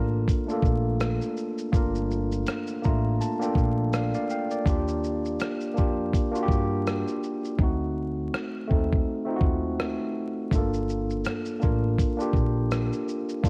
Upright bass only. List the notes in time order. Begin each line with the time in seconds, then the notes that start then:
Already playing: A1
0.63 A#1
1.74 G1
2.86 A1
3.56 A#1
4.66 D#2
5.79 F2
6.49 G2
7.59 D2
8.71 D#2
9.41 D#2
10.52 G1
11.64 A1
12.34 A#1
13.44 G1